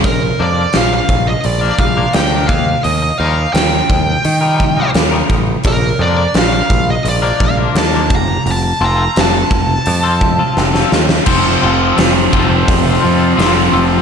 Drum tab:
CC |----------------|----------------|----------------|----------------|
HH |o---o---o---o---|o---o---o---o---|o---o---o---o---|o---o---o-------|
SD |----o-------o---|----o-------o---|----o-------o---|----o-------oooo|
BD |o-----o---o---o-|------o---o---o-|o-----o---o---o-|------o---o-----|

CC |x---------------|
HH |----o---o---o---|
SD |----o-------o---|
BD |o-----o-o-------|